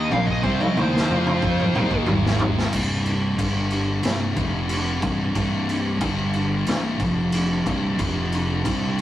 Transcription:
Already playing: D#3 A#3 D#4 D#5
0.11 A#1 A#2 F3 A#3 F5, high tom
0.26 D#5, kick
0.44 C2 C3 G3 C4 C5, kick
0.61 D#5, high tom
0.75 D#2 D#3 A#3 D#4, mid tom
0.80 C5
0.96 snare
1.09 F2 F3 C4 F4, mid tom
1.26 mid tom
1.42 kick
1.59 mid tom
1.74 D#2 D#3 A#3 D#4, mid tom
1.91 kick
2.06 G#1 G#2 D#3 G#3, floor tom
2.26 snare
2.39 floor tom
2.58 snare
2.72 C1 C2 G2 C3, kick, crash
3.06 crash
3.38 G1 G2 D3 G3, kick, crash
3.70 crash
4.03 C1 C2 G2 C3, snare, crash
4.36 F1 F2 C3 F3, kick, crash
4.69 crash
5.02 C1 C2 G2 C3, kick, crash
5.34 C1 C2 G2 C3, kick, crash
5.69 crash
6.00 G1 G2 D3 G3, kick, crash
6.33 crash
6.67 C1 C2 G2 C3, snare, crash
7.00 F1 F2 C3 F3, kick, crash
7.32 crash
7.66 C1 C2 G2 C3, kick, crash
7.98 F1 F2 C3 F3, kick, crash
8.32 crash
8.64 C2 C3 G3 C4, kick, crash

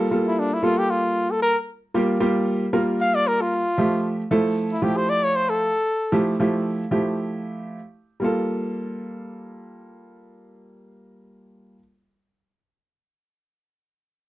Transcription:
0.11 G3 A#3 F4 A4
0.27 E4
0.39 D4
0.54 E4
0.63 G3 A#3 F4 A4
0.78 G4
0.90 F4
1.31 A4
1.42 A#4
1.94 G3 A#3 F4 G4
2.20 G3 A#3 F4 G4
2.73 G3 A#3 F4 A#4
3.01 F5
3.15 D5
3.27 A#4
3.41 F4
3.78 F3 A3 G4 E5
4.31 F3 A3 E4 A4
4.72 E4
4.82 F3 A3 E4 G4
4.97 C5
5.09 D5
5.24 C#5
5.36 C5
5.49 A4
6.12 F3 A3 E4 G4
6.40 F3 A3 E4 G4
6.91 F3 A3 E4 G4
8.20 G3 A#3 F4
8.24 A4

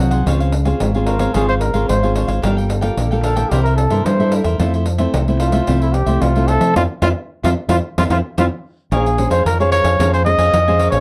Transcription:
Already playing: D#3 F#3 C4 F4 F#4
0.00 C2 G#4 C5
0.11 G#4 C5 F#5, pandeiro
0.26 C#2 C#3 C4 F4 G#4 C5 C#5 F5, pandeiro
0.40 C5 C#5 F5, pandeiro
0.52 muted cavaquinho stroke, pandeiro
0.65 C4 F4 G#4 C5 C#5 F5, pandeiro
0.80 G#1 G#2, pandeiro
0.94 C4 F4 G#4 C5 C#5 F5, pandeiro
1.06 F4 A#4 C5 C#5 F5, pandeiro
1.19 C4 F4 G#4 C5 C#5 F5, pandeiro
1.34 G#1 C#3 C4 F4 G#4 C5 C#5 F5, pandeiro
1.49 C5 C#5 F5, pandeiro
1.61 A#4, muted cavaquinho stroke, pandeiro
1.74 G#1 C4 F4 G#4 C5 C#5 F5, pandeiro
1.89 G#1 G#2 C5, pandeiro
2.03 C4 F4 G#4 C5 C#5 F5, pandeiro
2.15 F4 C5 C#5 F5, pandeiro
2.27 G#1 C5 C#5 F5, pandeiro
2.42 G1 G3 A#3 D4 F4 A4 A#4 F5 G5, pandeiro
2.57 A#4 F5 G5, pandeiro
2.69 muted cavaquinho stroke, pandeiro
2.81 A#3 F4 A4 A#4 F5 G5, pandeiro
2.97 A#1 D3, pandeiro
3.11 A#3 F4 A4 A#4 F5 G5, pandeiro
3.23 D4 A4 A#4 F5 G5, pandeiro
3.36 A#3 E4 A4 A#4 F5 G5, pandeiro
3.50 C2 C3 E4 G4 A#4 C5 E5, pandeiro
3.63 A#4 C5 E5, pandeiro
3.76 A4, muted cavaquinho stroke, pandeiro
3.90 G2 A#3 E4 A4 A#4 C5 E5, pandeiro
4.05 G2 C5, pandeiro
4.19 A#3 E4 A4 A#4 C5 E5, pandeiro
4.32 E4 A#4 C5 E5, pandeiro
4.44 E2 A#4 C5 E5, pandeiro
4.59 F2 F3 A3 C4 E4 F4 A4 C5 E5, pandeiro
4.74 A4 C5 E5, pandeiro
4.86 muted cavaquinho stroke, pandeiro
4.98 A3 C4 E4 A4 C5 E5, pandeiro
5.14 C2 C3, pandeiro
5.28 A3 C4 E4 A4 C5 E5, pandeiro
5.40 F4 A4 C5 E5, pandeiro
5.52 A3 C4 E4 A4 C5 E5, pandeiro
5.67 C2 F3 A3 C4 E4 F4 A4 C5 E5, pandeiro
5.81 E4 A4 C5 E5, pandeiro
5.93 G4, muted cavaquinho stroke, pandeiro
6.06 C2 A3 C4 E4 A4 C5 E5, pandeiro
6.22 C2 C3 F4, pandeiro
6.35 A3 C4 E4 A4 C5 E5, pandeiro
6.48 F4 A4 C5 E5, pandeiro
6.61 F3 A4 C5 E5, pandeiro
6.76 F2 C4 E4 F4 C5 E5 F5, pandeiro
7.02 F2 C4 E4 F4 C5 E5 F5, pandeiro
7.44 F2 C4 E4 F4 C5 E5 F5, pandeiro
7.68 F2 C4 E4 F4 C5 E5 F5, pandeiro
7.98 F2 C4 E4 F4 C5 E5 F5, pandeiro
8.10 F2 C4 E4 F4 C5 E5 F5, pandeiro
8.38 F2 C4 E4 F4 C5 E5 F5, pandeiro
8.91 A#1 A#3 C#4 G#4 A#4 C5 C#5 F5 G#5, pandeiro
9.06 C#5 F5 G#5, pandeiro
9.18 C#4 G#4 C5, muted cavaquinho stroke, pandeiro
9.30 F2 C5 C#5 F5 G#5, pandeiro
9.45 F2 F3 A#4, pandeiro
9.60 C#4 G#4 C5 C#5 F5 G#5, pandeiro
9.72 A#4 C#5 F5 G#5, pandeiro
9.84 F2 C#5 F5 G#5, pandeiro
9.99 F2 A#3 C#4 G#4 A#4 C5 C#5 F5 G#5, pandeiro
10.13 C5 C#5 F5 G#5, pandeiro
10.25 C#4 G#4 C5 D#5, muted cavaquinho stroke, pandeiro
10.38 F2 C#5 F5 G#5, pandeiro
10.53 F2 F3, pandeiro
10.68 C#4 G#4 C5 C#5 F5 G#5, pandeiro
10.79 A#4 C#5 F5 G#5, pandeiro
10.91 A#1 C#5 F5 G#5, pandeiro

